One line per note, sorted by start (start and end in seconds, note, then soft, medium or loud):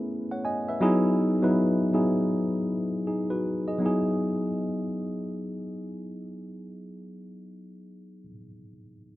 0.00 0.82 A3 medium
0.00 0.81 B3 medium
0.00 0.82 C#4 medium
0.00 0.82 E4 medium
0.00 0.82 G#4 medium
0.00 0.83 A#4 medium
0.00 0.70 B4 medium
0.31 0.44 C#5 soft
0.31 0.43 F#5 medium
0.45 0.67 D#5 soft
0.45 0.67 G#5 medium
0.69 1.04 B4 soft
0.69 1.03 E5 medium
0.81 1.34 F#3 loud
0.81 1.34 B3 medium
0.81 1.35 D#4 medium
0.81 1.35 E4 medium
0.81 1.35 G#4 loud
1.42 1.89 F#3 medium
1.42 1.89 B3 medium
1.42 1.89 D#4 medium
1.42 1.90 E4 medium
1.42 1.90 B4 medium
1.93 3.31 F#3 medium
1.93 3.32 B3 medium
1.93 3.06 D#4 medium
1.93 3.06 E4 medium
1.93 3.06 G#4 medium
3.07 3.29 D#4 soft
3.07 3.29 G#4 medium
3.30 3.66 F#4 soft
3.30 3.65 B4 medium
3.68 3.85 G#4 soft
3.68 4.03 D#5 medium
3.78 8.23 F#3 medium
3.78 8.24 B3 medium
3.78 8.26 D#4 medium
3.84 8.28 E4 medium
3.84 8.29 G#4 medium